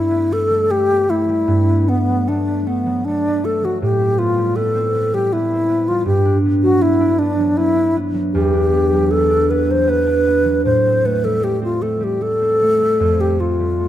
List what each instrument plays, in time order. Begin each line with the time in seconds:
Already playing: harp G2 G3 A3 D4, alto flute E4
0.11 harp B3
0.31 harp A3, alto flute A4
0.50 harp G3
0.70 harp A3, alto flute G4
0.90 harp B3
1.09 harp A3, alto flute E4
1.29 harp G3
1.48 harp G2
1.69 harp B3
1.88 harp A3, alto flute B3
2.08 harp F#3
2.27 harp A3, alto flute D4
2.48 harp B3
2.67 harp A3, alto flute B3
2.86 harp F#3
3.05 harp A3, alto flute D4
3.28 harp B3
3.44 harp A3, alto flute A4
3.64 harp F#3, alto flute F#4
3.82 harp A2, alto flute G4
4.00 harp C4
4.19 harp B3, alto flute F4
4.38 harp G3
4.56 harp B3, alto flute A4
4.75 harp C4
4.95 harp B3
5.14 harp G3, alto flute G4
5.33 harp B3, alto flute E4
5.53 harp C4
5.69 harp B3
5.88 harp G3, alto flute F4
6.06 harp G2, alto flute G4
6.25 harp D4
6.45 harp B3
6.63 harp F#3, alto flute F#4
6.82 harp B3, alto flute E4
7.00 harp D4
7.19 harp B3, alto flute D4
7.39 harp F#3
7.57 harp B3, alto flute E4
7.76 harp D4
7.96 harp B3
8.14 harp F#3
8.34 harp E2, alto flute G4
8.54 harp D4
8.72 harp B3
8.93 harp F#3
9.11 harp B3, alto flute A4
9.31 harp D4
9.50 harp B3, alto flute B4
9.70 harp F#3, alto flute C5
9.87 harp B3, alto flute B4
10.07 harp D4
10.27 harp B3
10.45 harp F#3
10.65 harp A2, alto flute C5
10.86 harp C4
11.05 harp A3, alto flute B4
11.24 harp G3, alto flute A4
11.43 harp A3, alto flute G4
11.62 harp C4, alto flute F4
11.82 harp A3, alto flute A4
12.00 harp G3, alto flute G4
12.21 harp A3, alto flute A4
12.41 harp C4
12.62 harp A3
12.82 harp G3
13.00 harp F2
13.19 harp C4, alto flute G4
13.40 harp A3, alto flute F4
13.60 harp G3
13.80 harp A3